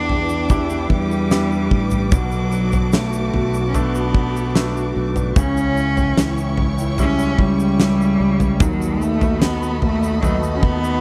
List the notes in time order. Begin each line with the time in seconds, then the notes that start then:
Already playing: E2 E3 B3 D4 E4 B4 G5 D6
0.09 G4, floor tom
0.29 D4, shaker
0.49 E3 D4 E4 G4, kick, floor tom, shaker
0.70 B3, shaker
0.90 E2 G3 D4, kick
1.11 G4, shaker
1.31 B3 D4 E4 G4, snare, shaker
1.52 D4, shaker
1.71 A1 G4, kick
1.91 D4, floor tom, shaker
2.12 B1 B2 F#3 F#4 A5, kick, floor tom, shaker
2.31 A3, shaker
2.52 D4, shaker
2.72 F#4, floor tom, shaker
2.93 F#3 A3, snare, shaker
3.13 D4, shaker
3.34 B1 F#4, floor tom
3.54 D4, shaker
3.68 C#4
3.74 B2 A3 B3 D4, floor tom, shaker
3.95 A3, shaker
4.15 D4, kick
4.35 F#4, shaker
4.55 F#3 A3 B3 D4, snare, shaker
4.76 D4, shaker
4.96 B1 F#4
5.16 D4, floor tom, shaker
5.36 C#2 C#3 C#4 E4 C#5 G5 C#6, kick, floor tom, shaker
5.57 C#4, shaker
5.77 E4, shaker
5.97 G4, floor tom, shaker
6.17 C#2 E3, snare, shaker
6.37 E4, shaker
6.57 G4, floor tom
6.78 E4, shaker
6.98 C#3 G3 C#4 E4, floor tom, shaker
7.19 C#4, shaker
7.38 C#2 G3 E4, kick
7.59 G4, shaker
7.80 E3 G3 C#4 E4, snare, shaker
8.00 E4, shaker
8.20 C#2 G4
8.40 E4, floor tom, shaker
8.60 D#2 D#3 F#3 F#4 D#5 A5 B5, kick, floor tom, shaker
8.81 B3, shaker
9.00 A3 D#4, shaker
9.21 F#4, floor tom, shaker
9.41 A3 B3, snare, shaker
9.62 D#4, shaker
9.81 D#2 A3 F#4, floor tom
10.02 D#4, shaker
10.21 D#3 F#3 A3 B3 D#4, floor tom, shaker
10.43 B3, shaker
10.56 C#4
10.61 B3 D#4, kick
10.84 F#4, shaker